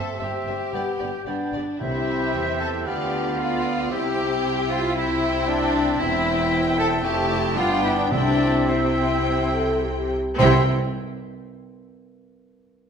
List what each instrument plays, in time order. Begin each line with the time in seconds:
Already playing: timpani G2, bassoon C4, violin section A4, oboe E5
0.19 double bass section G1, cello section G2, bassoon C4, viola section C4 G4, clarinet G4, violin section G4 E5, oboe E5, flute G5
0.47 double bass section G1, cello section G2, viola section C4 G4, violin section E5
0.73 double bass section G1, cello section G2, bassoon B3, french horn section B3 G4, viola section B3 G4, violin section D5, oboe G5
0.99 double bass section G1, cello section G2, viola section B3 G4, violin section D5
1.26 double bass section G1, cello section G2, bassoon B3, viola section B3 G4, violin section D4 D5, clarinet D4, flute D5, oboe G5
1.52 double bass section G1, cello section G2, viola section B3 G4, violin section D5
1.80 double bass section C2, timpani C3, cello section C3, french horn section C4 G4, bassoon C4, viola section C4 G4, clarinet E4, violin section E4 E5, flute E5, oboe G5
2.33 double bass section E2, cello section E3
2.60 violin section A4, clarinet A4, flute A5
2.86 double bass section D2, cello section D3, bassoon B3, viola section B3 F4, french horn section B3 F4, violin section G4 D5, clarinet G4, oboe F5, flute G5
3.38 viola section B3 F4, violin section F4 D5, clarinet F4, flute F5
3.90 double bass section C2, cello section C3, bassoon C4, viola section C4 E4, french horn section E4, clarinet G4, violin section G4 G5, oboe E5, flute G5
4.70 clarinet F4, violin section F4, flute F5
4.95 viola section C4 E4, clarinet E4, violin section E4 G5, flute E5
5.48 clarinet D4, violin section D4, flute D5
6.00 double bass section E1, cello section E2, viola section C4 E4, clarinet E4, violin section E4 G5, flute E5
6.78 clarinet A4, violin section A4, flute A5
7.03 double bass section F1, cello section F2, french horn section A3, bassoon A3, viola section C4 E4, violin section G4 A5, clarinet G4, flute G5
7.56 double bass section G1, cello section G2, french horn section B3 D4, viola section B3 D4, bassoon B3, violin section F4 G5, clarinet F4, oboe D5, flute F5
7.83 violin section E4, clarinet E4, flute E5
7.97 violin section D4, clarinet D4, flute D5
8.11 double bass section C2, timpani C3, cello section C3, french horn section C4 E4, bassoon C4, viola section C4 E4, violin section D4 G5, clarinet D4, flute D5, oboe E5
8.68 violin section C4 G5, clarinet C4, viola section C4 E4, french horn section E4, flute C5
9.53 french horn section A4
9.82 french horn section G4
10.38 double bass section C2, timpani C3, cello section C3, bassoon C4, violin section C4 G5, viola section C4 E4, french horn section C4 E4, clarinet C5, oboe E5, flute C6